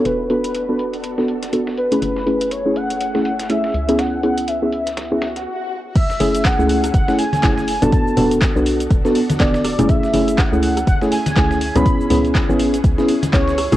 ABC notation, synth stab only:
X:1
M:4/4
L:1/16
Q:"Swing 16ths" 1/4=122
K:F#m
V:1 name="Synth stab"
[B,DFA]2 [B,DFA]3 [B,DFA]2 z2 [B,DFA] z2 [B,DFA]2 z [A,CEG]- | [A,CEG]2 [A,CEG]3 [A,CEG]2 z2 [A,CEG] z2 [A,CEG]2 z [B,CEG]- | [B,CEG]2 [B,CEG]3 [B,CEG]2 z2 [B,CEG] z6 | z2 [A,CEG]3 [A,CEG]2 z2 [A,CEG] z2 [A,CEG]2 z [B,DFA]- |
[B,DFA]2 [B,DFA]3 [B,DFA]2 z2 [B,DFA] z2 [B,DFA]2 z [A,CEG]- | [A,CEG]2 [A,CEG]3 [A,CEG]2 z2 [A,CEG] z2 [A,CEG]2 z [B,CEG]- | [B,CEG]2 [B,CEG]3 [B,CEG]2 z2 [B,CEG] z2 [B,CEG]2 z [A,CEG] |]